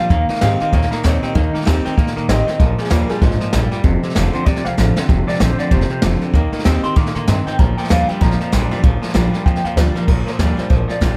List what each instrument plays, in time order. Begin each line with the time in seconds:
Already playing: clean electric guitar F5
0.00 steel-string acoustic guitar D4 F4
0.10 upright bass D#2, clean electric guitar D#3 A#3 F5, steel-string acoustic guitar D#3, kick, snare
0.29 clean electric guitar D#3 A#3, muted upright bass stroke, snare
0.35 snare
0.41 upright bass G#2, clean electric guitar D#3 C4 F5, steel-string acoustic guitar G3 A#3 D#4 G4, snare, hi-hat pedal
0.60 clean electric guitar D#3 C4, steel-string acoustic guitar D#4 G4, muted upright bass stroke, snare
0.72 upright bass D#2, steel-string acoustic guitar A#2, clean electric guitar D#3 A#3, kick, snare
0.82 snare
0.91 clean electric guitar D#3 A#3 A#4, muted upright bass stroke, snare
1.03 upright bass D#2, clean electric guitar D#3 C4 C#5, steel-string acoustic guitar G3 A#3 D#4 G4, snare, hi-hat pedal
1.23 clean electric guitar D#3 C4 A#4, steel-string acoustic guitar D#4 G4, muted upright bass stroke, snare
1.35 upright bass D#2, clean electric guitar D#3 A#3 D#4, steel-string acoustic guitar D#3, kick, snare
1.53 clean electric guitar D#3 A#3, muted upright bass stroke, snare
1.61 snare
1.65 upright bass D#2, clean electric guitar D#3 C4, steel-string acoustic guitar G3 A#3 D#4 G4, snare, hi-hat pedal
1.85 clean electric guitar D#3 C4, steel-string acoustic guitar D#4 G4, muted upright bass stroke, snare
1.97 upright bass A#2, steel-string acoustic guitar A#2, clean electric guitar D#3 A#3, kick, snare
2.07 snare
2.16 upright bass A#2, clean electric guitar D#3 A#3, snare
2.28 upright bass A1, clean electric guitar D#3 C4 D#5, steel-string acoustic guitar G3 A#3 D#4 G4, snare, hi-hat pedal
2.47 clean electric guitar D#3 C4, steel-string acoustic guitar D#4 G4, muted upright bass stroke, snare
2.60 upright bass A#1, clean electric guitar A#2 F3 A#4, steel-string acoustic guitar A#2, kick, snare
2.78 clean electric guitar A#2 F3 G#4, snare
2.84 snare
2.90 upright bass D#2, clean electric guitar A#2 G3 A#4, steel-string acoustic guitar F3 A#3 D4 F4, snare, hi-hat pedal
3.09 clean electric guitar A#2 G3 G#4, steel-string acoustic guitar D4 F4, muted upright bass stroke, snare
3.21 upright bass A#1, steel-string acoustic guitar G#2, clean electric guitar A#2 F3 F4, kick, snare
3.31 snare
3.40 clean electric guitar A#2 F3, muted upright bass stroke, snare
3.53 upright bass A#1, steel-string acoustic guitar G2, clean electric guitar A#2 G3, snare, hi-hat pedal
3.71 clean electric guitar A#2 G3, muted upright bass stroke, snare
3.84 upright bass F1, steel-string acoustic guitar F2, clean electric guitar F2 C3, kick, snare
4.03 clean electric guitar F2 C3, snare
4.10 snare
4.15 upright bass F1, clean electric guitar F2 D3, steel-string acoustic guitar F3 A3 C4 F4, snare, hi-hat pedal
4.33 clean electric guitar F2 D3 C5, steel-string acoustic guitar C4 F4, muted upright bass stroke, snare
4.45 upright bass C2, clean electric guitar F2 C3 D5, steel-string acoustic guitar C3, kick, snare
4.56 snare
4.65 upright bass C2, clean electric guitar F2 C3 F5, snare
4.77 upright bass A1, clean electric guitar F2 D3, steel-string acoustic guitar F3 A3 C4 F4, snare, hi-hat pedal
4.96 clean electric guitar F2 D3, steel-string acoustic guitar C4 F4, snare
5.08 upright bass F1, clean electric guitar F2 C3, steel-string acoustic guitar F2, kick, snare
5.27 clean electric guitar F2 C3 D5, snare
5.34 snare
5.39 upright bass A#1, clean electric guitar F2 D3 C5, steel-string acoustic guitar F3 A3 C4 F4, snare, hi-hat pedal
5.58 clean electric guitar F2 D3 D5, muted upright bass stroke, snare
5.71 upright bass F1, clean electric guitar F2 C3 C5, steel-string acoustic guitar C3, kick, snare
5.81 snare
5.90 clean electric guitar F2 C3, snare
6.02 upright bass F1, clean electric guitar F2 D3, steel-string acoustic guitar F3 A3 C4 F4, snare, hi-hat pedal
6.21 clean electric guitar F2 D3, steel-string acoustic guitar C4 F4, snare
6.33 upright bass D#2, clean electric guitar D#3 A#3, steel-string acoustic guitar D#3, kick, snare
6.52 clean electric guitar D#3 A#3, muted upright bass stroke, snare
6.59 snare
6.64 upright bass D#2, clean electric guitar D#3 C4, steel-string acoustic guitar G3 A#3 D#4 G4, snare, hi-hat pedal
6.83 clean electric guitar D#3 C4 C6, steel-string acoustic guitar D#4 G4, muted upright bass stroke, snare
6.96 upright bass A#2, steel-string acoustic guitar D3, clean electric guitar D#3 A#3 A#5, kick, snare
7.06 snare
7.15 upright bass A#2, clean electric guitar D#3 A#3 C6, snare
7.28 upright bass G2, steel-string acoustic guitar G#2, clean electric guitar D#3 C4 A#5, snare, hi-hat pedal
7.46 clean electric guitar D#3 C4 G5, muted upright bass stroke, snare
7.59 upright bass A#1, clean electric guitar A#2 F3 A#5, steel-string acoustic guitar A#2, kick, snare
7.77 clean electric guitar A#2 F3 G5, snare
7.84 snare
7.89 upright bass D#2, clean electric guitar A#2 G3 F5, steel-string acoustic guitar F3 A#3 D4 F4, snare, hi-hat pedal
8.08 clean electric guitar A#2 G3 G5, steel-string acoustic guitar D4 F4, muted upright bass stroke, snare
8.21 upright bass A#1, steel-string acoustic guitar F2, clean electric guitar A#2 F3 A#5, kick, snare
8.31 snare
8.40 clean electric guitar A#2 F3, snare
8.52 upright bass A#1, clean electric guitar A#2 G3, steel-string acoustic guitar F3 A#3 D4 F4, snare, hi-hat pedal
8.71 clean electric guitar A#2 G3, steel-string acoustic guitar D4 F4, muted upright bass stroke, snare
8.83 upright bass A#1, clean electric guitar A#2 F3, steel-string acoustic guitar A#2, kick, snare
9.02 clean electric guitar A#2 F3, muted upright bass stroke, snare
9.09 snare
9.14 upright bass A#1, clean electric guitar A#2 G3, steel-string acoustic guitar F3 A#3 D4 F4, snare, hi-hat pedal
9.33 clean electric guitar A#2 G3, steel-string acoustic guitar D4 F4, snare
9.46 upright bass F2, steel-string acoustic guitar F2, clean electric guitar A#2 F3 G5, kick, snare
9.56 snare
9.64 upright bass F2, clean electric guitar A#2 F3 F5, snare
9.76 upright bass D2, clean electric guitar A#2 G3 D5, steel-string acoustic guitar F3 A#3 D4 F4, snare, hi-hat pedal
9.95 clean electric guitar A#2 G3 A#4, steel-string acoustic guitar D4 F4, muted upright bass stroke, snare
10.07 upright bass A#1, clean electric guitar A#2 F3 A#4, steel-string acoustic guitar A#2, kick, snare, crash
10.26 clean electric guitar A#2 F3 C5, muted upright bass stroke, snare
10.39 upright bass D#2, clean electric guitar A#2 G3 D5, steel-string acoustic guitar F3 A#3 D4 F4, kick, snare, hi-hat pedal
10.57 clean electric guitar A#2 G3 C5, steel-string acoustic guitar D4 F4, muted upright bass stroke, snare
10.70 upright bass A#1, steel-string acoustic guitar F2, clean electric guitar A#2 F3 A#4, kick, snare
10.88 clean electric guitar A#2 F3 D5, snare
11.01 upright bass A#1, clean electric guitar A#2 G3, steel-string acoustic guitar F3 A#3 D4 F4, kick, snare, hi-hat pedal